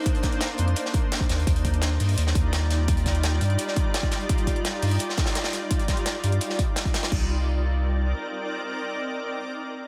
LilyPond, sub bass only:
\new Staff \with { instrumentName = "Sub bass" } { \clef bass \time 4/4 \key c \minor \tempo 4 = 170 r4. f,8 r4. ees,8 | ees,4. g,8 ees,8 ees,4.~ | ees,4. g,8 r2 | r4. g,8 r2 |
r4. g,8 r2 | c,2. r4 | r1 | }